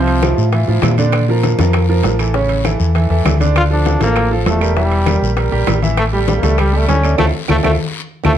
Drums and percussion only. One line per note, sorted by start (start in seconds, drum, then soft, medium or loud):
0.07 high bongo soft
0.07 high conga soft
0.07 high timbale medium
0.22 high bongo medium
0.22 high conga medium
0.22 high timbale medium
0.22 low timbale medium
0.22 short guiro medium
0.22 claves medium
0.37 high bongo soft
0.37 high conga soft
0.37 short guiro medium
0.52 high bongo medium
0.52 high conga soft
0.52 high timbale medium
0.52 long guiro medium
0.67 high bongo soft
0.67 high conga soft
0.82 high bongo medium
0.82 low bongo medium
0.82 high conga medium
0.82 high timbale loud
0.82 low timbale medium
0.82 short guiro medium
0.82 claves medium
0.98 high conga medium
0.98 high timbale medium
0.98 short guiro medium
1.12 high bongo medium
1.12 high conga soft
1.12 high timbale medium
1.12 long guiro medium
1.12 claves medium
1.28 high conga soft
1.43 high bongo medium
1.43 high conga medium
1.43 high timbale medium
1.43 low timbale medium
1.43 short guiro medium
1.59 high conga loud
1.59 high timbale medium
1.59 short guiro medium
1.73 high bongo medium
1.73 high conga soft
1.73 high timbale medium
1.73 long guiro medium
1.73 claves medium
1.89 high conga soft
2.03 high bongo medium
2.03 low bongo medium
2.03 high conga soft
2.03 high timbale medium
2.03 low timbale medium
2.03 short guiro medium
2.19 high conga soft
2.19 high timbale medium
2.19 short guiro medium
2.19 claves medium
2.34 high bongo medium
2.34 high conga soft
2.34 long guiro medium
2.49 high bongo soft
2.49 high conga soft
2.49 high timbale medium
2.65 high bongo medium
2.65 high conga medium
2.65 high timbale medium
2.65 low timbale medium
2.65 short guiro medium
2.65 claves medium
2.80 high bongo soft
2.80 high conga soft
2.80 short guiro medium
2.95 high bongo medium
2.95 high conga soft
2.95 high timbale medium
2.95 long guiro medium
3.10 high bongo soft
3.10 high conga soft
3.25 high bongo medium
3.25 low bongo medium
3.25 high conga medium
3.25 high timbale loud
3.25 low timbale medium
3.25 short guiro medium
3.25 claves medium
3.40 high conga medium
3.40 high timbale medium
3.40 short guiro medium
3.56 high bongo medium
3.56 high conga soft
3.56 high timbale loud
3.56 long guiro medium
3.56 claves medium
3.71 high conga soft
3.86 high bongo medium
3.86 high conga medium
3.86 high timbale medium
3.86 low timbale medium
3.86 short guiro medium
4.01 high conga medium
4.01 high timbale medium
4.01 short guiro medium
4.16 high bongo medium
4.16 high conga soft
4.16 high timbale medium
4.16 long guiro medium
4.16 claves medium
4.31 high conga soft
4.46 high bongo medium
4.46 low bongo medium
4.46 high conga soft
4.46 high timbale medium
4.46 low timbale medium
4.46 short guiro medium
4.61 high conga soft
4.61 high timbale medium
4.61 short guiro medium
4.61 claves medium
4.76 high bongo medium
4.76 high conga soft
4.76 long guiro medium
4.91 high bongo soft
4.91 high conga soft
4.91 high timbale medium
5.06 high bongo medium
5.06 high conga medium
5.06 high timbale medium
5.06 low timbale medium
5.06 short guiro medium
5.06 claves medium
5.22 high bongo soft
5.22 high conga soft
5.22 short guiro medium
5.37 high bongo medium
5.37 high conga soft
5.37 high timbale medium
5.37 long guiro medium
5.52 high bongo soft
5.52 high conga soft
5.67 high bongo medium
5.67 low bongo medium
5.67 high conga medium
5.67 high timbale loud
5.67 low timbale medium
5.67 short guiro medium
5.67 claves medium
5.82 high conga medium
5.82 high timbale medium
5.82 short guiro medium
5.97 high bongo medium
5.97 high conga soft
5.97 high timbale loud
5.97 long guiro medium
5.97 claves medium
6.13 high conga soft
6.28 high bongo medium
6.28 high conga medium
6.28 high timbale medium
6.28 low timbale medium
6.28 short guiro medium
6.43 high conga medium
6.43 high timbale medium
6.43 short guiro medium
6.58 high bongo medium
6.58 high conga soft
6.58 high timbale medium
6.58 long guiro medium
6.58 claves medium
6.74 high conga soft
6.89 high bongo medium
6.89 low bongo medium
6.89 high conga soft
6.89 high timbale medium
6.89 low timbale medium
6.89 short guiro medium
7.03 high conga soft
7.03 high timbale medium
7.03 short guiro medium
7.03 claves medium
7.18 low bongo medium
7.18 high conga medium
7.18 high timbale loud
7.18 long guiro medium
7.18 claves loud
7.48 low bongo medium
7.48 high conga medium
7.48 high timbale medium
7.48 long guiro medium
7.48 claves medium
7.63 low bongo medium
7.63 high conga loud
7.63 high timbale loud
7.63 long guiro loud
7.63 claves medium
8.24 low bongo loud
8.24 high conga medium
8.24 high timbale medium
8.24 long guiro medium
8.24 claves medium